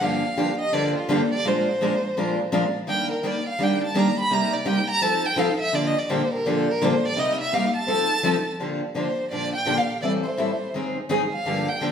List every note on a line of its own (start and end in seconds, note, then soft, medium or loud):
0.00 0.22 G2 medium
0.00 0.22 D3 medium
0.00 0.22 F3 medium
0.00 0.22 A#3 medium
0.00 0.22 D4 medium
0.00 0.23 G4 medium
0.00 0.59 F5 medium
0.37 0.48 G2 medium
0.37 0.48 D3 medium
0.37 0.48 F3 medium
0.37 0.49 A#3 medium
0.37 0.49 D4 medium
0.37 0.49 G4 medium
0.59 0.74 D#5 medium
0.73 0.94 G2 medium
0.73 0.94 D3 medium
0.73 0.94 F3 medium
0.73 0.94 A#3 medium
0.73 0.94 D4 medium
0.73 0.94 G4 medium
0.73 0.95 D5 medium
0.96 1.13 F4 medium
1.09 1.20 G2 loud
1.09 1.20 D3 loud
1.09 1.20 F3 loud
1.09 1.20 A#3 loud
1.09 1.20 D4 medium
1.09 1.21 G4 loud
1.09 1.33 A4 medium
1.34 1.49 D5 loud
1.44 1.66 A#2 medium
1.44 1.66 F3 medium
1.44 1.66 G#3 medium
1.44 1.66 D4 medium
1.44 1.66 F4 medium
1.44 1.67 A#4 medium
1.44 2.53 C5 medium
1.81 1.92 A#2 medium
1.81 1.92 F3 medium
1.81 1.92 G#3 medium
1.81 1.93 D4 medium
1.81 1.93 F4 medium
1.81 1.93 A#4 medium
2.17 2.38 A#2 medium
2.17 2.38 F3 medium
2.17 2.38 G#3 medium
2.17 2.38 D4 medium
2.17 2.38 F4 medium
2.17 2.38 A#4 medium
2.52 2.63 A#2 medium
2.52 2.63 F3 loud
2.52 2.63 G#3 medium
2.52 2.63 D4 loud
2.52 2.64 F4 medium
2.52 2.64 A#4 loud
2.87 3.08 D#3 medium
2.87 3.09 G3 medium
2.87 3.09 A#3 medium
2.87 3.09 D4 medium
2.87 3.09 G4 medium
2.87 3.09 G5 medium
3.12 3.28 A#4 medium
3.23 3.34 D#3 medium
3.23 3.34 G3 medium
3.23 3.35 A#3 medium
3.23 3.35 D4 medium
3.23 3.35 G4 medium
3.23 3.47 D5 medium
3.49 3.64 F5 medium
3.59 3.80 D#3 medium
3.59 3.80 G3 medium
3.59 3.80 A#3 medium
3.59 3.81 D4 medium
3.59 3.81 G4 medium
3.63 3.83 G5 medium
3.84 4.00 A5 medium
3.94 4.06 D#3 medium
3.94 4.06 G3 medium
3.94 4.06 A#3 medium
3.94 4.07 D4 loud
3.94 4.06 G4 loud
3.99 4.19 A#5 medium
4.20 4.34 B5 loud
4.30 4.51 C3 medium
4.30 4.52 G3 medium
4.30 4.52 A#3 medium
4.30 4.52 D#4 medium
4.30 4.52 G4 medium
4.30 4.55 A#5 medium
4.54 4.68 D5 medium
4.65 4.77 C3 medium
4.65 4.77 G3 medium
4.65 4.77 A#3 medium
4.65 4.77 D#4 medium
4.65 4.77 G4 loud
4.65 4.89 G5 loud
4.90 5.04 A#5 loud
5.01 5.23 F3 medium
5.01 5.23 C4 medium
5.01 5.23 D#4 medium
5.01 5.24 A4 medium
5.01 5.27 A5 loud
5.25 5.40 G5 loud
5.36 5.48 F3 loud
5.36 5.49 C4 loud
5.36 5.49 D#4 loud
5.36 5.49 A4 loud
5.36 5.59 F5 medium
5.60 5.76 E5 loud
5.72 5.94 A#2 medium
5.72 5.94 D3 medium
5.72 5.94 F3 medium
5.72 5.94 A#3 medium
5.72 5.94 D4 medium
5.72 5.95 G4 medium
5.72 5.88 D5 medium
5.87 6.00 D#5 medium
5.99 6.12 D5 medium
6.09 6.20 A#2 medium
6.09 6.21 D3 medium
6.09 6.20 F3 medium
6.09 6.21 A#3 medium
6.09 6.21 D4 medium
6.09 6.21 G4 medium
6.09 6.32 C5 medium
6.33 6.49 A#4 medium
6.46 6.66 A#2 medium
6.46 6.66 D3 medium
6.46 6.67 F3 medium
6.46 6.67 A#3 medium
6.46 6.67 D4 medium
6.46 6.67 G4 medium
6.46 6.72 A4 medium
6.71 6.86 A#4 loud
6.82 6.92 A#2 loud
6.82 6.92 D3 loud
6.82 6.92 F3 loud
6.82 6.93 A#3 loud
6.82 6.93 D4 loud
6.82 6.93 G4 loud
6.82 7.07 C5 medium
7.05 7.21 D5 loud
7.16 7.37 C3 medium
7.16 7.37 G3 medium
7.16 7.37 A#3 medium
7.16 7.38 D#4 medium
7.16 7.38 G4 medium
7.16 7.40 D#5 medium
7.41 7.55 E5 loud
7.52 7.63 C3 medium
7.52 7.63 G3 medium
7.52 7.64 A#3 medium
7.52 7.64 D#4 medium
7.52 7.64 G4 loud
7.52 7.75 F5 medium
7.76 8.49 A5 loud
7.87 8.08 F3 medium
7.87 8.08 C4 medium
7.87 8.09 D#4 medium
7.87 8.09 A4 medium
8.23 8.34 F3 loud
8.23 8.35 C4 loud
8.23 8.35 D#4 loud
8.23 8.35 A4 loud
8.60 8.80 A#2 medium
8.60 8.80 D3 medium
8.60 8.81 F3 medium
8.60 8.81 A#3 medium
8.60 8.81 D4 medium
8.60 8.81 G4 medium
8.95 9.06 A#2 medium
8.95 9.06 D3 medium
8.95 9.06 F3 medium
8.95 9.06 A#3 medium
8.95 9.07 D4 medium
8.95 9.07 G4 medium
8.95 9.30 C5 medium
9.31 9.52 A#2 medium
9.31 9.52 D3 medium
9.31 9.52 F3 medium
9.31 9.52 A#3 medium
9.31 9.53 D4 medium
9.31 9.53 G4 medium
9.31 9.53 D5 medium
9.55 9.79 G5 loud
9.65 9.77 A#2 medium
9.65 9.77 D3 medium
9.65 9.78 F3 medium
9.65 9.78 A#3 medium
9.65 9.78 D4 medium
9.65 9.78 G4 loud
9.78 10.01 F5 medium
10.02 10.23 A2 medium
10.02 10.23 E3 medium
10.02 10.24 G3 medium
10.02 10.24 C4 medium
10.02 10.24 E4 medium
10.02 10.24 A4 medium
10.02 10.12 D5 medium
10.23 10.92 C5 medium
10.37 10.49 A2 medium
10.37 10.49 E3 medium
10.37 10.49 G3 medium
10.37 10.49 C4 medium
10.37 10.49 E4 medium
10.37 10.50 A4 medium
10.74 10.95 G#2 medium
10.74 10.95 D#3 medium
10.74 10.95 F#3 medium
10.74 10.96 C4 medium
10.74 10.96 D#4 medium
10.74 10.96 G#4 medium
11.09 11.21 G#2 medium
11.09 11.21 D#3 medium
11.09 11.21 F#3 medium
11.09 11.21 C4 loud
11.09 11.21 D#4 medium
11.09 11.21 G#4 loud
11.32 11.70 F5 medium
11.46 11.67 G2 medium
11.46 11.67 D3 medium
11.46 11.67 F3 medium
11.46 11.67 A#3 medium
11.46 11.67 D4 medium
11.46 11.67 G4 medium
11.69 11.92 G5 medium
11.81 11.92 G2 medium
11.81 11.92 D3 medium
11.81 11.92 F3 medium
11.81 11.92 A#3 medium
11.81 11.92 D4 medium
11.81 11.92 G4 medium